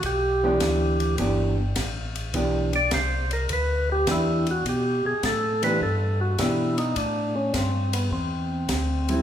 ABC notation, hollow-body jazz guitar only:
X:1
M:4/4
L:1/8
Q:"Swing" 1/4=104
K:Em
V:1 name="Hollow-body jazz guitar"
z [E,B,DG]3 [E,B,DG] z3 | [E,B,DG] z4 z [E,B,DG] z | z3 [E,B,DG] z2 [E,B,DG] z | z6 z [G,CE] |]